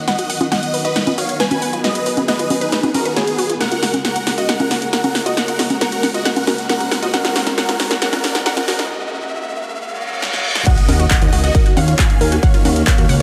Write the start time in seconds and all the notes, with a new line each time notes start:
Already playing: D#3 F#4, riser
0.08 F#3 B3 B4 D#5 F#5, snare, closed hi-hat
0.19 F#4, closed hi-hat
0.30 F#5, open hi-hat
0.41 F4, closed hi-hat, high conga
0.52 F#4 D#5 F#5, snare, closed hi-hat
0.63 closed hi-hat
0.74 B4, open hi-hat
0.85 F#4 B4 D#5, closed hi-hat
0.96 F#5, snare, closed hi-hat
1.07 F4, closed hi-hat, high conga
1.18 F#4 C#5 F5, open hi-hat
1.29 closed hi-hat
1.40 B4 G#5, snare, closed hi-hat
1.51 F#4, closed hi-hat, high conga
1.62 F#5, open hi-hat
1.73 F4, closed hi-hat
1.84 F#4 G#4 B4 D#5, snare, closed hi-hat
1.95 closed hi-hat
2.06 B4, open hi-hat
2.17 F#4, closed hi-hat, high conga
2.28 B4 D#5 F#5, snare, closed hi-hat
2.39 F4, closed hi-hat
2.50 F#4, open hi-hat, high conga
2.61 D#4 B4, closed hi-hat
2.72 B4, snare, closed hi-hat
2.83 F#4, closed hi-hat, high conga
2.94 F#4 A#4, open hi-hat, high conga
3.05 B4, closed hi-hat
3.16 B3 G#4 C#5, snare, closed hi-hat
3.27 closed hi-hat
3.38 F#4, open hi-hat
3.50 F4, closed hi-hat
3.61 C#3 G#3 A#3 F#4 A#4 F#5, snare, closed hi-hat
3.72 F4, closed hi-hat
3.83 F#4, snare, open hi-hat
3.94 closed hi-hat, high conga
4.05 A#4 F#5, snare, closed hi-hat
4.16 F#4, closed hi-hat
4.27 F#5, snare, open hi-hat
4.38 F4 F#4 D#5, closed hi-hat
4.49 A#4 F#5, snare, closed hi-hat
4.60 F4, closed hi-hat, high conga
4.71 F#4, snare, open hi-hat
4.82 closed hi-hat
4.93 A#4 F#5, snare, closed hi-hat
5.04 F#4, closed hi-hat, high conga
5.15 F#5, snare, open hi-hat
5.26 F4 F#4 D#5, closed hi-hat
5.37 A#4 F#5, snare, closed hi-hat
5.48 F4, closed hi-hat
5.59 F#4, snare, open hi-hat
5.70 closed hi-hat, high conga
5.81 A#4 F#5, snare, closed hi-hat
5.92 F#4, closed hi-hat
6.03 F#5, snare, open hi-hat, high conga
6.14 F4 F#4 D#5, closed hi-hat
6.25 A#4 F#5, snare, closed hi-hat
6.36 F4, closed hi-hat, high conga
6.47 F#4, snare, open hi-hat, high conga
6.58 closed hi-hat
6.69 A#4 F#5, snare, closed hi-hat
6.80 F#4, closed hi-hat
6.91 F#5, snare, open hi-hat
7.02 F4 F#4 D#5, closed hi-hat
7.13 A#4 F#5, snare, closed hi-hat
7.24 F4, snare, closed hi-hat
7.36 F#4, snare, open hi-hat
7.47 snare, closed hi-hat, high conga
7.58 A#4 F#5, snare, closed hi-hat
7.69 F4, snare, closed hi-hat
7.80 F#4, snare, open hi-hat
7.91 snare, closed hi-hat
8.02 A#4 F#5, snare, closed hi-hat
8.13 F4, snare, closed hi-hat, high conga
8.24 F#4, snare, open hi-hat
8.35 snare, closed hi-hat
8.46 A#4 F#5, snare, closed hi-hat
8.57 F4, snare, closed hi-hat, high conga
8.68 F#4, snare, open hi-hat
8.79 snare, closed hi-hat
9.78 reverse cymbal
10.22 snare
10.33 snare
10.55 snare
10.66 D#3 A#3 C#4 F#4 D#5 F#5, kick, closed hi-hat, crash, impact
10.78 closed hi-hat
10.88 D#2 A#4, open hi-hat, high conga
11.00 F#4, closed hi-hat
11.11 D#5 F#5, kick, clap, closed hi-hat
11.22 D#2 F4, closed hi-hat
11.33 C#2 F#4, open hi-hat
11.43 F#4 D#5, closed hi-hat
11.55 A#4, kick, closed hi-hat
11.66 F#4, closed hi-hat
11.77 D#2 C#5 F5 F#5, open hi-hat, high conga
11.88 F4, closed hi-hat
11.99 F#4 F5 G#5, kick, clap, closed hi-hat
12.10 closed hi-hat
12.21 D#2 A#4, open hi-hat
12.32 F#4, closed hi-hat
12.43 C#5 F5 F#5, kick, closed hi-hat
12.54 F4, closed hi-hat
12.65 D#2 F#4, open hi-hat, high conga
12.76 closed hi-hat
12.87 A#4 C#5 F5, kick, clap, closed hi-hat
12.98 D#2 F#4, closed hi-hat
13.09 C#2 F#5, open hi-hat